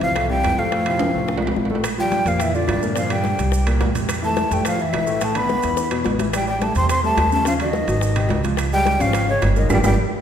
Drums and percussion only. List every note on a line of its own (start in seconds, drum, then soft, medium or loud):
0.01 high bongo soft
0.01 high conga soft
0.01 high timbale medium
0.16 high bongo medium
0.16 high conga soft
0.16 high timbale medium
0.16 claves medium
0.30 high bongo soft
0.30 high conga soft
0.44 high bongo soft
0.44 low bongo medium
0.44 high conga soft
0.44 high timbale medium
0.44 low timbale medium
0.44 claves medium
0.58 high bongo soft
0.58 high conga medium
0.72 high bongo medium
0.72 high conga soft
0.72 high timbale medium
0.86 high conga soft
0.86 high timbale medium
0.86 claves medium
0.99 high bongo soft
0.99 high conga medium
0.99 high timbale medium
1.14 high bongo soft
1.14 high conga soft
1.28 high bongo medium
1.28 high conga soft
1.28 high timbale medium
1.38 low timbale medium
1.42 high bongo soft
1.42 high conga soft
1.42 claves medium
1.47 low timbale medium
1.56 high bongo soft
1.56 low bongo medium
1.56 high conga medium
1.65 low timbale medium
1.70 high bongo soft
1.70 high conga medium
1.75 low timbale medium
1.84 high bongo medium
1.84 high conga soft
1.84 high timbale loud
1.84 claves medium
1.84 maracas medium
1.98 high conga soft
1.98 maracas soft
2.12 high bongo medium
2.12 high conga medium
2.12 high timbale medium
2.12 low timbale medium
2.12 maracas soft
2.26 high bongo soft
2.26 high conga soft
2.26 high timbale medium
2.26 maracas medium
2.40 high bongo medium
2.40 high conga soft
2.40 high timbale medium
2.40 claves medium
2.40 maracas medium
2.54 high bongo soft
2.54 high conga soft
2.54 maracas soft
2.68 high bongo soft
2.68 low bongo medium
2.68 high timbale medium
2.68 low timbale medium
2.68 claves medium
2.68 maracas soft
2.81 high bongo soft
2.81 high conga medium
2.81 maracas medium
2.96 high bongo medium
2.96 high conga soft
2.96 high timbale medium
2.96 maracas medium
3.10 high conga soft
3.10 high timbale medium
3.10 claves medium
3.10 maracas soft
3.24 high bongo medium
3.24 high conga medium
3.24 low timbale medium
3.24 maracas soft
3.38 high bongo soft
3.38 high conga soft
3.38 high timbale medium
3.38 maracas medium
3.52 high bongo medium
3.52 high conga soft
3.52 maracas medium
3.66 high bongo soft
3.66 high conga soft
3.66 high timbale medium
3.66 claves medium
3.66 maracas soft
3.81 high bongo soft
3.81 low bongo medium
3.81 high conga medium
3.81 high timbale medium
3.81 low timbale medium
3.81 maracas soft
3.95 high bongo soft
3.95 high conga medium
3.95 high timbale medium
3.95 maracas medium
4.09 high bongo medium
4.09 high conga soft
4.09 high timbale medium
4.09 claves medium
4.09 maracas medium
4.23 high conga soft
4.23 maracas soft
4.37 high bongo medium
4.37 high conga medium
4.37 high timbale medium
4.37 low timbale medium
4.37 maracas soft
4.51 high bongo soft
4.51 high conga soft
4.51 high timbale medium
4.51 maracas medium
4.65 high bongo medium
4.65 high conga soft
4.65 high timbale medium
4.65 claves medium
4.65 maracas medium
4.79 high bongo soft
4.79 high conga soft
4.79 maracas soft
4.93 high bongo soft
4.93 low bongo medium
4.93 high conga soft
4.93 high timbale medium
4.93 low timbale medium
4.93 claves medium
4.93 maracas soft
5.07 high bongo soft
5.07 maracas medium
5.21 high bongo medium
5.21 high conga soft
5.21 high timbale medium
5.21 maracas medium
5.35 high conga soft
5.35 high timbale loud
5.35 claves medium
5.35 maracas soft
5.49 high bongo medium
5.49 high conga medium
5.49 low timbale medium
5.49 maracas soft
5.62 high bongo soft
5.62 high conga soft
5.62 high timbale medium
5.62 maracas medium
5.77 high bongo medium
5.77 high conga soft
5.77 maracas medium
5.91 low bongo medium
5.91 high conga soft
5.91 high timbale medium
5.91 claves medium
5.91 maracas soft
6.04 low bongo loud
6.04 high conga medium
6.04 high timbale medium
6.04 low timbale medium
6.04 maracas soft
6.19 low bongo medium
6.19 high conga medium
6.19 high timbale medium
6.19 maracas medium
6.33 high bongo medium
6.33 high timbale medium
6.33 claves medium
6.33 maracas medium
6.47 high conga soft
6.47 maracas soft
6.61 high bongo medium
6.61 high conga medium
6.61 high timbale medium
6.61 low timbale medium
6.61 maracas soft
6.75 high bongo soft
6.75 high conga soft
6.75 high timbale medium
6.75 maracas medium
6.89 high bongo medium
6.89 high conga soft
6.89 high timbale medium
6.89 claves medium
6.89 maracas medium
7.03 high bongo soft
7.03 high conga soft
7.03 maracas soft
7.17 high bongo soft
7.17 low bongo medium
7.17 high conga soft
7.17 high timbale medium
7.17 low timbale medium
7.17 claves medium
7.17 maracas soft
7.32 high bongo soft
7.32 maracas medium
7.45 high bongo medium
7.45 high conga soft
7.45 high timbale medium
7.45 maracas medium
7.59 high conga soft
7.59 high timbale medium
7.59 claves medium
7.59 maracas soft
7.73 high bongo medium
7.73 high conga loud
7.73 low timbale medium
7.73 maracas soft
7.87 high bongo soft
7.87 high conga soft
7.87 high timbale medium
7.87 maracas medium
8.01 high bongo medium
8.01 high conga soft
8.01 maracas medium
8.15 high bongo soft
8.15 high conga soft
8.15 high timbale medium
8.15 claves medium
8.15 maracas soft
8.29 high bongo soft
8.29 low bongo medium
8.29 high conga medium
8.29 high timbale medium
8.29 low timbale medium
8.29 maracas soft
8.44 high bongo soft
8.44 high conga medium
8.44 high timbale medium
8.44 maracas medium
8.57 high bongo medium
8.57 high timbale medium
8.57 claves medium
8.57 maracas medium
8.72 high conga soft
8.72 maracas soft
8.85 high bongo medium
8.85 high conga medium
8.85 high timbale medium
8.85 low timbale medium
8.85 maracas soft
8.99 high bongo soft
8.99 high conga soft
8.99 high timbale medium
8.99 maracas medium
9.13 high bongo medium
9.13 high conga soft
9.13 high timbale medium
9.13 claves medium
9.13 maracas medium
9.28 high bongo soft
9.28 high conga soft
9.28 maracas soft
9.42 high bongo soft
9.42 low bongo medium
9.42 high conga soft
9.42 high timbale medium
9.42 low timbale medium
9.42 claves medium
9.42 maracas soft
9.56 high bongo soft
9.56 high conga medium
9.56 maracas medium
9.70 low bongo medium
9.70 high conga loud
9.70 high timbale loud
9.70 claves loud
9.70 maracas medium
9.84 low bongo medium
9.84 high conga loud
9.84 high timbale loud
9.84 claves medium
9.84 maracas loud